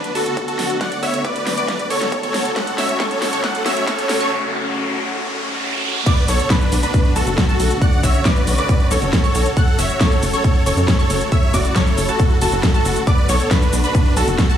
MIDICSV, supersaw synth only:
0, 0, Header, 1, 2, 480
1, 0, Start_track
1, 0, Key_signature, 2, "minor"
1, 0, Tempo, 437956
1, 887, Time_signature, 4, 2, 24, 8
1, 15975, End_track
2, 0, Start_track
2, 0, Title_t, "Supersaw synth"
2, 0, Program_c, 0, 81
2, 0, Note_on_c, 0, 62, 77
2, 0, Note_on_c, 0, 71, 95
2, 120, Note_off_c, 0, 62, 0
2, 120, Note_off_c, 0, 71, 0
2, 168, Note_on_c, 0, 66, 76
2, 168, Note_on_c, 0, 69, 94
2, 480, Note_off_c, 0, 66, 0
2, 480, Note_off_c, 0, 69, 0
2, 525, Note_on_c, 0, 66, 77
2, 525, Note_on_c, 0, 69, 94
2, 839, Note_off_c, 0, 66, 0
2, 839, Note_off_c, 0, 69, 0
2, 885, Note_on_c, 0, 74, 75
2, 886, Note_on_c, 0, 78, 97
2, 1095, Note_off_c, 0, 74, 0
2, 1095, Note_off_c, 0, 78, 0
2, 1126, Note_on_c, 0, 73, 78
2, 1126, Note_on_c, 0, 76, 90
2, 1335, Note_off_c, 0, 73, 0
2, 1335, Note_off_c, 0, 76, 0
2, 1363, Note_on_c, 0, 71, 78
2, 1364, Note_on_c, 0, 74, 92
2, 1678, Note_off_c, 0, 71, 0
2, 1678, Note_off_c, 0, 74, 0
2, 1725, Note_on_c, 0, 74, 99
2, 1726, Note_on_c, 0, 71, 76
2, 2039, Note_off_c, 0, 71, 0
2, 2039, Note_off_c, 0, 74, 0
2, 2084, Note_on_c, 0, 73, 91
2, 2085, Note_on_c, 0, 69, 77
2, 2399, Note_off_c, 0, 69, 0
2, 2399, Note_off_c, 0, 73, 0
2, 2447, Note_on_c, 0, 69, 77
2, 2447, Note_on_c, 0, 73, 95
2, 2760, Note_off_c, 0, 69, 0
2, 2760, Note_off_c, 0, 73, 0
2, 2808, Note_on_c, 0, 78, 93
2, 2809, Note_on_c, 0, 69, 71
2, 3016, Note_off_c, 0, 69, 0
2, 3016, Note_off_c, 0, 78, 0
2, 3047, Note_on_c, 0, 76, 82
2, 3048, Note_on_c, 0, 73, 71
2, 3256, Note_off_c, 0, 73, 0
2, 3256, Note_off_c, 0, 76, 0
2, 3288, Note_on_c, 0, 69, 72
2, 3290, Note_on_c, 0, 73, 91
2, 3601, Note_off_c, 0, 69, 0
2, 3601, Note_off_c, 0, 73, 0
2, 3648, Note_on_c, 0, 73, 86
2, 3649, Note_on_c, 0, 69, 70
2, 3749, Note_off_c, 0, 69, 0
2, 3749, Note_off_c, 0, 73, 0
2, 3769, Note_on_c, 0, 78, 94
2, 3770, Note_on_c, 0, 69, 73
2, 3977, Note_off_c, 0, 69, 0
2, 3977, Note_off_c, 0, 78, 0
2, 4008, Note_on_c, 0, 76, 85
2, 4009, Note_on_c, 0, 73, 72
2, 4216, Note_off_c, 0, 76, 0
2, 4217, Note_off_c, 0, 73, 0
2, 4246, Note_on_c, 0, 69, 79
2, 4246, Note_on_c, 0, 73, 94
2, 4559, Note_off_c, 0, 73, 0
2, 4560, Note_off_c, 0, 69, 0
2, 4605, Note_on_c, 0, 69, 75
2, 4605, Note_on_c, 0, 73, 88
2, 4707, Note_off_c, 0, 69, 0
2, 4707, Note_off_c, 0, 73, 0
2, 6647, Note_on_c, 0, 71, 82
2, 6648, Note_on_c, 0, 74, 102
2, 6856, Note_off_c, 0, 71, 0
2, 6856, Note_off_c, 0, 74, 0
2, 6887, Note_on_c, 0, 69, 79
2, 6887, Note_on_c, 0, 73, 93
2, 7096, Note_off_c, 0, 69, 0
2, 7096, Note_off_c, 0, 73, 0
2, 7129, Note_on_c, 0, 62, 78
2, 7130, Note_on_c, 0, 71, 95
2, 7441, Note_off_c, 0, 62, 0
2, 7441, Note_off_c, 0, 71, 0
2, 7488, Note_on_c, 0, 62, 79
2, 7488, Note_on_c, 0, 71, 102
2, 7800, Note_off_c, 0, 62, 0
2, 7800, Note_off_c, 0, 71, 0
2, 7846, Note_on_c, 0, 69, 96
2, 7847, Note_on_c, 0, 66, 79
2, 8160, Note_off_c, 0, 66, 0
2, 8160, Note_off_c, 0, 69, 0
2, 8208, Note_on_c, 0, 66, 78
2, 8208, Note_on_c, 0, 69, 97
2, 8521, Note_off_c, 0, 66, 0
2, 8521, Note_off_c, 0, 69, 0
2, 8568, Note_on_c, 0, 78, 104
2, 8569, Note_on_c, 0, 74, 82
2, 8776, Note_off_c, 0, 78, 0
2, 8777, Note_off_c, 0, 74, 0
2, 8808, Note_on_c, 0, 76, 89
2, 8809, Note_on_c, 0, 73, 79
2, 9016, Note_off_c, 0, 73, 0
2, 9016, Note_off_c, 0, 76, 0
2, 9047, Note_on_c, 0, 71, 78
2, 9047, Note_on_c, 0, 74, 98
2, 9360, Note_off_c, 0, 71, 0
2, 9360, Note_off_c, 0, 74, 0
2, 9407, Note_on_c, 0, 74, 100
2, 9408, Note_on_c, 0, 71, 80
2, 9720, Note_off_c, 0, 71, 0
2, 9720, Note_off_c, 0, 74, 0
2, 9766, Note_on_c, 0, 69, 78
2, 9767, Note_on_c, 0, 73, 98
2, 10079, Note_off_c, 0, 69, 0
2, 10080, Note_off_c, 0, 73, 0
2, 10123, Note_on_c, 0, 69, 78
2, 10123, Note_on_c, 0, 73, 99
2, 10438, Note_off_c, 0, 69, 0
2, 10438, Note_off_c, 0, 73, 0
2, 10484, Note_on_c, 0, 78, 103
2, 10485, Note_on_c, 0, 69, 81
2, 10694, Note_off_c, 0, 78, 0
2, 10695, Note_off_c, 0, 69, 0
2, 10725, Note_on_c, 0, 73, 81
2, 10726, Note_on_c, 0, 76, 92
2, 10935, Note_off_c, 0, 73, 0
2, 10935, Note_off_c, 0, 76, 0
2, 10966, Note_on_c, 0, 69, 78
2, 10967, Note_on_c, 0, 73, 96
2, 11280, Note_off_c, 0, 69, 0
2, 11280, Note_off_c, 0, 73, 0
2, 11327, Note_on_c, 0, 69, 82
2, 11327, Note_on_c, 0, 73, 100
2, 11640, Note_off_c, 0, 69, 0
2, 11640, Note_off_c, 0, 73, 0
2, 11686, Note_on_c, 0, 69, 77
2, 11686, Note_on_c, 0, 73, 96
2, 11999, Note_off_c, 0, 73, 0
2, 12000, Note_off_c, 0, 69, 0
2, 12048, Note_on_c, 0, 73, 100
2, 12049, Note_on_c, 0, 69, 79
2, 12361, Note_off_c, 0, 69, 0
2, 12361, Note_off_c, 0, 73, 0
2, 12410, Note_on_c, 0, 76, 106
2, 12411, Note_on_c, 0, 73, 80
2, 12617, Note_off_c, 0, 76, 0
2, 12618, Note_off_c, 0, 73, 0
2, 12647, Note_on_c, 0, 66, 77
2, 12648, Note_on_c, 0, 74, 91
2, 12856, Note_off_c, 0, 66, 0
2, 12856, Note_off_c, 0, 74, 0
2, 12887, Note_on_c, 0, 73, 95
2, 12888, Note_on_c, 0, 69, 79
2, 13200, Note_off_c, 0, 69, 0
2, 13200, Note_off_c, 0, 73, 0
2, 13249, Note_on_c, 0, 66, 82
2, 13249, Note_on_c, 0, 69, 101
2, 13561, Note_off_c, 0, 66, 0
2, 13561, Note_off_c, 0, 69, 0
2, 13607, Note_on_c, 0, 66, 78
2, 13607, Note_on_c, 0, 69, 95
2, 13920, Note_off_c, 0, 66, 0
2, 13920, Note_off_c, 0, 69, 0
2, 13965, Note_on_c, 0, 69, 96
2, 13966, Note_on_c, 0, 66, 79
2, 14279, Note_off_c, 0, 66, 0
2, 14279, Note_off_c, 0, 69, 0
2, 14326, Note_on_c, 0, 71, 80
2, 14327, Note_on_c, 0, 74, 103
2, 14535, Note_off_c, 0, 71, 0
2, 14536, Note_off_c, 0, 74, 0
2, 14566, Note_on_c, 0, 73, 91
2, 14567, Note_on_c, 0, 69, 79
2, 14775, Note_off_c, 0, 69, 0
2, 14775, Note_off_c, 0, 73, 0
2, 14809, Note_on_c, 0, 62, 77
2, 14810, Note_on_c, 0, 71, 100
2, 15121, Note_off_c, 0, 62, 0
2, 15121, Note_off_c, 0, 71, 0
2, 15168, Note_on_c, 0, 71, 99
2, 15169, Note_on_c, 0, 62, 81
2, 15481, Note_off_c, 0, 62, 0
2, 15481, Note_off_c, 0, 71, 0
2, 15528, Note_on_c, 0, 69, 99
2, 15529, Note_on_c, 0, 66, 80
2, 15840, Note_off_c, 0, 69, 0
2, 15841, Note_off_c, 0, 66, 0
2, 15888, Note_on_c, 0, 66, 79
2, 15888, Note_on_c, 0, 69, 95
2, 15975, Note_off_c, 0, 66, 0
2, 15975, Note_off_c, 0, 69, 0
2, 15975, End_track
0, 0, End_of_file